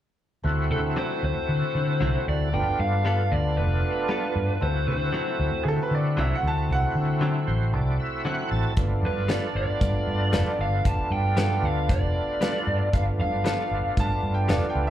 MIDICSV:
0, 0, Header, 1, 8, 480
1, 0, Start_track
1, 0, Tempo, 520382
1, 414, Time_signature, 4, 2, 24, 8
1, 13744, End_track
2, 0, Start_track
2, 0, Title_t, "Upright piano"
2, 0, Program_c, 0, 0
2, 5197, Note_on_c, 0, 68, 62
2, 5227, Note_off_c, 0, 68, 0
2, 5242, Note_on_c, 0, 69, 83
2, 5353, Note_off_c, 0, 69, 0
2, 5375, Note_on_c, 0, 71, 72
2, 5465, Note_off_c, 0, 71, 0
2, 5486, Note_on_c, 0, 74, 71
2, 5706, Note_off_c, 0, 74, 0
2, 5721, Note_on_c, 0, 76, 72
2, 5833, Note_off_c, 0, 76, 0
2, 5861, Note_on_c, 0, 78, 74
2, 5948, Note_off_c, 0, 78, 0
2, 5972, Note_on_c, 0, 81, 75
2, 6189, Note_off_c, 0, 81, 0
2, 6203, Note_on_c, 0, 78, 85
2, 6656, Note_off_c, 0, 78, 0
2, 12911, Note_on_c, 0, 81, 86
2, 13211, Note_off_c, 0, 81, 0
2, 13230, Note_on_c, 0, 79, 66
2, 13375, Note_off_c, 0, 79, 0
2, 13388, Note_on_c, 0, 74, 69
2, 13534, Note_off_c, 0, 74, 0
2, 13555, Note_on_c, 0, 79, 68
2, 13698, Note_off_c, 0, 79, 0
2, 13744, End_track
3, 0, Start_track
3, 0, Title_t, "Lead electric guitar"
3, 0, Program_c, 1, 29
3, 665, Note_on_c, 1, 69, 75
3, 728, Note_off_c, 1, 69, 0
3, 906, Note_on_c, 1, 72, 81
3, 1125, Note_off_c, 1, 72, 0
3, 1150, Note_on_c, 1, 72, 89
3, 2107, Note_off_c, 1, 72, 0
3, 2111, Note_on_c, 1, 74, 92
3, 2340, Note_on_c, 1, 79, 101
3, 2352, Note_off_c, 1, 74, 0
3, 2563, Note_off_c, 1, 79, 0
3, 2587, Note_on_c, 1, 77, 88
3, 2807, Note_off_c, 1, 77, 0
3, 2826, Note_on_c, 1, 77, 89
3, 3058, Note_on_c, 1, 74, 91
3, 3070, Note_off_c, 1, 77, 0
3, 3282, Note_off_c, 1, 74, 0
3, 3301, Note_on_c, 1, 71, 82
3, 4264, Note_off_c, 1, 71, 0
3, 4268, Note_on_c, 1, 72, 90
3, 4494, Note_off_c, 1, 72, 0
3, 4505, Note_on_c, 1, 72, 74
3, 5186, Note_off_c, 1, 72, 0
3, 8360, Note_on_c, 1, 71, 74
3, 8589, Note_off_c, 1, 71, 0
3, 8592, Note_on_c, 1, 74, 83
3, 8819, Note_off_c, 1, 74, 0
3, 8830, Note_on_c, 1, 74, 91
3, 9785, Note_off_c, 1, 74, 0
3, 9788, Note_on_c, 1, 77, 82
3, 10019, Note_on_c, 1, 81, 107
3, 10028, Note_off_c, 1, 77, 0
3, 10240, Note_off_c, 1, 81, 0
3, 10261, Note_on_c, 1, 79, 89
3, 10498, Note_off_c, 1, 79, 0
3, 10509, Note_on_c, 1, 79, 98
3, 10747, Note_on_c, 1, 77, 92
3, 10748, Note_off_c, 1, 79, 0
3, 10977, Note_off_c, 1, 77, 0
3, 10981, Note_on_c, 1, 74, 88
3, 11932, Note_off_c, 1, 74, 0
3, 11936, Note_on_c, 1, 77, 87
3, 12000, Note_off_c, 1, 77, 0
3, 12184, Note_on_c, 1, 77, 80
3, 12859, Note_off_c, 1, 77, 0
3, 13744, End_track
4, 0, Start_track
4, 0, Title_t, "Tonewheel organ"
4, 0, Program_c, 2, 16
4, 402, Note_on_c, 2, 57, 68
4, 406, Note_on_c, 2, 60, 62
4, 410, Note_on_c, 2, 64, 65
4, 416, Note_on_c, 2, 66, 77
4, 2295, Note_off_c, 2, 57, 0
4, 2297, Note_off_c, 2, 60, 0
4, 2299, Note_off_c, 2, 64, 0
4, 2302, Note_off_c, 2, 66, 0
4, 2332, Note_on_c, 2, 57, 60
4, 2337, Note_on_c, 2, 59, 52
4, 2340, Note_on_c, 2, 62, 55
4, 2344, Note_on_c, 2, 65, 69
4, 4220, Note_off_c, 2, 57, 0
4, 4222, Note_off_c, 2, 59, 0
4, 4224, Note_off_c, 2, 62, 0
4, 4226, Note_off_c, 2, 65, 0
4, 4249, Note_on_c, 2, 57, 59
4, 4251, Note_on_c, 2, 60, 58
4, 4257, Note_on_c, 2, 64, 57
4, 4259, Note_on_c, 2, 66, 73
4, 6895, Note_on_c, 2, 72, 61
4, 7120, Note_off_c, 2, 72, 0
4, 7134, Note_on_c, 2, 74, 66
4, 7359, Note_off_c, 2, 74, 0
4, 7379, Note_on_c, 2, 76, 61
4, 7601, Note_off_c, 2, 76, 0
4, 7616, Note_on_c, 2, 78, 62
4, 7840, Note_off_c, 2, 78, 0
4, 7851, Note_on_c, 2, 81, 67
4, 8055, Note_off_c, 2, 57, 0
4, 8056, Note_off_c, 2, 60, 0
4, 8059, Note_off_c, 2, 64, 0
4, 8060, Note_off_c, 2, 66, 0
4, 8077, Note_off_c, 2, 81, 0
4, 8086, Note_on_c, 2, 57, 77
4, 8092, Note_on_c, 2, 62, 64
4, 8093, Note_on_c, 2, 59, 65
4, 8102, Note_on_c, 2, 65, 76
4, 11888, Note_off_c, 2, 57, 0
4, 11891, Note_off_c, 2, 62, 0
4, 11892, Note_off_c, 2, 59, 0
4, 11896, Note_off_c, 2, 65, 0
4, 11925, Note_on_c, 2, 57, 65
4, 11933, Note_on_c, 2, 59, 53
4, 11934, Note_on_c, 2, 62, 56
4, 11940, Note_on_c, 2, 65, 69
4, 13744, Note_off_c, 2, 57, 0
4, 13744, Note_off_c, 2, 59, 0
4, 13744, Note_off_c, 2, 62, 0
4, 13744, Note_off_c, 2, 65, 0
4, 13744, End_track
5, 0, Start_track
5, 0, Title_t, "Clean electric guitar"
5, 0, Program_c, 3, 27
5, 889, Note_on_c, 3, 50, 74
5, 896, Note_on_c, 3, 54, 75
5, 903, Note_on_c, 3, 60, 71
5, 911, Note_on_c, 3, 64, 76
5, 1045, Note_off_c, 3, 50, 0
5, 1049, Note_off_c, 3, 54, 0
5, 1052, Note_off_c, 3, 60, 0
5, 1056, Note_off_c, 3, 64, 0
5, 1849, Note_on_c, 3, 50, 80
5, 1858, Note_on_c, 3, 54, 80
5, 1864, Note_on_c, 3, 60, 81
5, 1873, Note_on_c, 3, 64, 90
5, 2006, Note_off_c, 3, 50, 0
5, 2011, Note_off_c, 3, 54, 0
5, 2014, Note_off_c, 3, 60, 0
5, 2018, Note_off_c, 3, 64, 0
5, 2813, Note_on_c, 3, 55, 67
5, 2820, Note_on_c, 3, 59, 77
5, 2830, Note_on_c, 3, 65, 82
5, 2835, Note_on_c, 3, 69, 89
5, 2969, Note_off_c, 3, 55, 0
5, 2972, Note_off_c, 3, 59, 0
5, 2977, Note_off_c, 3, 65, 0
5, 2980, Note_off_c, 3, 69, 0
5, 3772, Note_on_c, 3, 55, 76
5, 3781, Note_on_c, 3, 59, 78
5, 3786, Note_on_c, 3, 65, 82
5, 3793, Note_on_c, 3, 69, 75
5, 3928, Note_off_c, 3, 55, 0
5, 3933, Note_off_c, 3, 59, 0
5, 3936, Note_off_c, 3, 65, 0
5, 3939, Note_off_c, 3, 69, 0
5, 4728, Note_on_c, 3, 50, 71
5, 4738, Note_on_c, 3, 54, 73
5, 4744, Note_on_c, 3, 60, 83
5, 4752, Note_on_c, 3, 64, 75
5, 4887, Note_off_c, 3, 50, 0
5, 4892, Note_off_c, 3, 54, 0
5, 4894, Note_off_c, 3, 60, 0
5, 4899, Note_off_c, 3, 64, 0
5, 5691, Note_on_c, 3, 50, 81
5, 5701, Note_on_c, 3, 54, 87
5, 5706, Note_on_c, 3, 60, 97
5, 5713, Note_on_c, 3, 64, 87
5, 5848, Note_off_c, 3, 50, 0
5, 5853, Note_off_c, 3, 54, 0
5, 5855, Note_off_c, 3, 60, 0
5, 5859, Note_off_c, 3, 64, 0
5, 6650, Note_on_c, 3, 50, 85
5, 6660, Note_on_c, 3, 54, 88
5, 6665, Note_on_c, 3, 60, 84
5, 6672, Note_on_c, 3, 64, 88
5, 6807, Note_off_c, 3, 50, 0
5, 6812, Note_off_c, 3, 54, 0
5, 6815, Note_off_c, 3, 60, 0
5, 6818, Note_off_c, 3, 64, 0
5, 7610, Note_on_c, 3, 50, 82
5, 7619, Note_on_c, 3, 54, 88
5, 7625, Note_on_c, 3, 60, 83
5, 7631, Note_on_c, 3, 64, 96
5, 7766, Note_off_c, 3, 50, 0
5, 7771, Note_off_c, 3, 54, 0
5, 7774, Note_off_c, 3, 60, 0
5, 7777, Note_off_c, 3, 64, 0
5, 8564, Note_on_c, 3, 55, 78
5, 8574, Note_on_c, 3, 59, 71
5, 8579, Note_on_c, 3, 65, 79
5, 8587, Note_on_c, 3, 69, 77
5, 8723, Note_off_c, 3, 55, 0
5, 8728, Note_off_c, 3, 59, 0
5, 8730, Note_off_c, 3, 65, 0
5, 8734, Note_off_c, 3, 69, 0
5, 9526, Note_on_c, 3, 55, 81
5, 9535, Note_on_c, 3, 59, 83
5, 9541, Note_on_c, 3, 65, 91
5, 9548, Note_on_c, 3, 69, 99
5, 9683, Note_off_c, 3, 55, 0
5, 9687, Note_off_c, 3, 59, 0
5, 9691, Note_off_c, 3, 65, 0
5, 9694, Note_off_c, 3, 69, 0
5, 10485, Note_on_c, 3, 55, 81
5, 10494, Note_on_c, 3, 59, 75
5, 10501, Note_on_c, 3, 65, 75
5, 10507, Note_on_c, 3, 69, 85
5, 10642, Note_off_c, 3, 55, 0
5, 10646, Note_off_c, 3, 59, 0
5, 10650, Note_off_c, 3, 65, 0
5, 10653, Note_off_c, 3, 69, 0
5, 11447, Note_on_c, 3, 55, 72
5, 11454, Note_on_c, 3, 59, 77
5, 11464, Note_on_c, 3, 65, 83
5, 11468, Note_on_c, 3, 69, 76
5, 11602, Note_off_c, 3, 55, 0
5, 11606, Note_off_c, 3, 59, 0
5, 11610, Note_off_c, 3, 65, 0
5, 11613, Note_off_c, 3, 69, 0
5, 12402, Note_on_c, 3, 55, 75
5, 12410, Note_on_c, 3, 59, 75
5, 12418, Note_on_c, 3, 65, 75
5, 12426, Note_on_c, 3, 69, 86
5, 12559, Note_off_c, 3, 55, 0
5, 12563, Note_off_c, 3, 59, 0
5, 12567, Note_off_c, 3, 65, 0
5, 12571, Note_off_c, 3, 69, 0
5, 13362, Note_on_c, 3, 55, 81
5, 13369, Note_on_c, 3, 59, 85
5, 13378, Note_on_c, 3, 65, 97
5, 13384, Note_on_c, 3, 69, 94
5, 13518, Note_off_c, 3, 55, 0
5, 13522, Note_off_c, 3, 59, 0
5, 13526, Note_off_c, 3, 65, 0
5, 13529, Note_off_c, 3, 69, 0
5, 13744, End_track
6, 0, Start_track
6, 0, Title_t, "Fingered electric bass"
6, 0, Program_c, 4, 33
6, 410, Note_on_c, 4, 38, 86
6, 652, Note_on_c, 4, 50, 89
6, 666, Note_off_c, 4, 38, 0
6, 877, Note_off_c, 4, 50, 0
6, 1134, Note_on_c, 4, 38, 80
6, 1257, Note_off_c, 4, 38, 0
6, 1373, Note_on_c, 4, 50, 79
6, 1497, Note_off_c, 4, 50, 0
6, 1614, Note_on_c, 4, 50, 85
6, 1839, Note_off_c, 4, 50, 0
6, 1856, Note_on_c, 4, 36, 85
6, 1979, Note_off_c, 4, 36, 0
6, 2100, Note_on_c, 4, 38, 82
6, 2323, Note_off_c, 4, 38, 0
6, 2339, Note_on_c, 4, 31, 88
6, 2461, Note_off_c, 4, 31, 0
6, 2577, Note_on_c, 4, 43, 82
6, 3026, Note_off_c, 4, 43, 0
6, 3060, Note_on_c, 4, 38, 83
6, 3298, Note_on_c, 4, 29, 92
6, 3312, Note_off_c, 4, 38, 0
6, 3523, Note_off_c, 4, 29, 0
6, 4018, Note_on_c, 4, 43, 72
6, 4141, Note_off_c, 4, 43, 0
6, 4260, Note_on_c, 4, 38, 84
6, 4497, Note_on_c, 4, 50, 95
6, 4511, Note_off_c, 4, 38, 0
6, 4722, Note_off_c, 4, 50, 0
6, 4976, Note_on_c, 4, 38, 81
6, 5100, Note_off_c, 4, 38, 0
6, 5213, Note_on_c, 4, 50, 76
6, 5338, Note_off_c, 4, 50, 0
6, 5452, Note_on_c, 4, 50, 88
6, 5679, Note_off_c, 4, 50, 0
6, 5697, Note_on_c, 4, 36, 86
6, 5820, Note_off_c, 4, 36, 0
6, 5931, Note_on_c, 4, 38, 90
6, 6158, Note_off_c, 4, 38, 0
6, 6175, Note_on_c, 4, 36, 91
6, 6299, Note_off_c, 4, 36, 0
6, 6415, Note_on_c, 4, 50, 83
6, 6864, Note_off_c, 4, 50, 0
6, 6897, Note_on_c, 4, 33, 82
6, 7132, Note_off_c, 4, 33, 0
6, 7132, Note_on_c, 4, 36, 89
6, 7358, Note_off_c, 4, 36, 0
6, 7853, Note_on_c, 4, 33, 77
6, 7977, Note_off_c, 4, 33, 0
6, 8091, Note_on_c, 4, 31, 85
6, 8327, Note_on_c, 4, 43, 93
6, 8341, Note_off_c, 4, 31, 0
6, 8555, Note_off_c, 4, 43, 0
6, 8809, Note_on_c, 4, 31, 80
6, 8934, Note_off_c, 4, 31, 0
6, 9050, Note_on_c, 4, 43, 84
6, 9175, Note_off_c, 4, 43, 0
6, 9291, Note_on_c, 4, 43, 82
6, 9516, Note_off_c, 4, 43, 0
6, 9526, Note_on_c, 4, 29, 88
6, 9652, Note_off_c, 4, 29, 0
6, 9767, Note_on_c, 4, 31, 86
6, 9994, Note_off_c, 4, 31, 0
6, 10008, Note_on_c, 4, 29, 85
6, 10132, Note_off_c, 4, 29, 0
6, 10243, Note_on_c, 4, 43, 80
6, 10694, Note_off_c, 4, 43, 0
6, 10723, Note_on_c, 4, 38, 84
6, 10969, Note_on_c, 4, 29, 84
6, 10983, Note_off_c, 4, 38, 0
6, 11194, Note_off_c, 4, 29, 0
6, 11687, Note_on_c, 4, 43, 76
6, 11811, Note_off_c, 4, 43, 0
6, 11932, Note_on_c, 4, 31, 86
6, 12168, Note_on_c, 4, 43, 93
6, 12182, Note_off_c, 4, 31, 0
6, 12393, Note_off_c, 4, 43, 0
6, 12647, Note_on_c, 4, 31, 78
6, 12770, Note_off_c, 4, 31, 0
6, 12887, Note_on_c, 4, 43, 81
6, 13010, Note_off_c, 4, 43, 0
6, 13127, Note_on_c, 4, 43, 83
6, 13351, Note_off_c, 4, 43, 0
6, 13369, Note_on_c, 4, 29, 88
6, 13491, Note_off_c, 4, 29, 0
6, 13607, Note_on_c, 4, 37, 89
6, 13744, Note_off_c, 4, 37, 0
6, 13744, End_track
7, 0, Start_track
7, 0, Title_t, "Muted fingered electric bass strokes"
7, 1265, Note_on_c, 9, 29, 30
7, 1357, Note_off_c, 9, 29, 0
7, 1989, Note_on_c, 9, 29, 36
7, 2081, Note_off_c, 9, 29, 0
7, 2468, Note_on_c, 9, 29, 36
7, 2560, Note_off_c, 9, 29, 0
7, 5110, Note_on_c, 9, 29, 33
7, 5202, Note_off_c, 9, 29, 0
7, 5828, Note_on_c, 9, 29, 34
7, 5920, Note_off_c, 9, 29, 0
7, 6310, Note_on_c, 9, 29, 36
7, 6403, Note_off_c, 9, 29, 0
7, 10140, Note_on_c, 9, 29, 35
7, 10232, Note_off_c, 9, 29, 0
7, 12784, Note_on_c, 9, 29, 33
7, 12876, Note_off_c, 9, 29, 0
7, 13499, Note_on_c, 9, 29, 37
7, 13591, Note_off_c, 9, 29, 0
7, 13744, End_track
8, 0, Start_track
8, 0, Title_t, "Drums"
8, 8087, Note_on_c, 9, 42, 52
8, 8091, Note_on_c, 9, 36, 109
8, 8179, Note_off_c, 9, 42, 0
8, 8183, Note_off_c, 9, 36, 0
8, 8568, Note_on_c, 9, 42, 55
8, 8578, Note_on_c, 9, 38, 104
8, 8661, Note_off_c, 9, 42, 0
8, 8670, Note_off_c, 9, 38, 0
8, 9051, Note_on_c, 9, 36, 102
8, 9051, Note_on_c, 9, 42, 60
8, 9143, Note_off_c, 9, 36, 0
8, 9143, Note_off_c, 9, 42, 0
8, 9528, Note_on_c, 9, 42, 61
8, 9537, Note_on_c, 9, 38, 105
8, 9620, Note_off_c, 9, 42, 0
8, 9629, Note_off_c, 9, 38, 0
8, 10011, Note_on_c, 9, 36, 105
8, 10011, Note_on_c, 9, 42, 63
8, 10103, Note_off_c, 9, 36, 0
8, 10103, Note_off_c, 9, 42, 0
8, 10488, Note_on_c, 9, 42, 61
8, 10497, Note_on_c, 9, 38, 103
8, 10580, Note_off_c, 9, 42, 0
8, 10590, Note_off_c, 9, 38, 0
8, 10971, Note_on_c, 9, 36, 108
8, 10972, Note_on_c, 9, 42, 65
8, 11063, Note_off_c, 9, 36, 0
8, 11064, Note_off_c, 9, 42, 0
8, 11453, Note_on_c, 9, 42, 60
8, 11462, Note_on_c, 9, 38, 102
8, 11545, Note_off_c, 9, 42, 0
8, 11554, Note_off_c, 9, 38, 0
8, 11931, Note_on_c, 9, 36, 100
8, 11931, Note_on_c, 9, 42, 55
8, 12023, Note_off_c, 9, 36, 0
8, 12023, Note_off_c, 9, 42, 0
8, 12411, Note_on_c, 9, 42, 57
8, 12420, Note_on_c, 9, 38, 104
8, 12503, Note_off_c, 9, 42, 0
8, 12512, Note_off_c, 9, 38, 0
8, 12887, Note_on_c, 9, 42, 58
8, 12888, Note_on_c, 9, 36, 106
8, 12979, Note_off_c, 9, 42, 0
8, 12980, Note_off_c, 9, 36, 0
8, 13366, Note_on_c, 9, 42, 58
8, 13375, Note_on_c, 9, 38, 107
8, 13458, Note_off_c, 9, 42, 0
8, 13467, Note_off_c, 9, 38, 0
8, 13744, End_track
0, 0, End_of_file